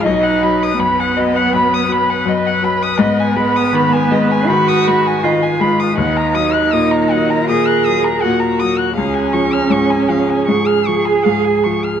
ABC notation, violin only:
X:1
M:4/4
L:1/16
Q:1/4=81
K:G#dor
V:1 name="Violin"
d f b d' b f d f b d' b f d f b d' | d g b d' b g d g b d' b g d g b d' | f a d' f' d' a f a d' f' d' a f a d' f' | e g c' e' c' g e g c' e' c' g e g c' e' |]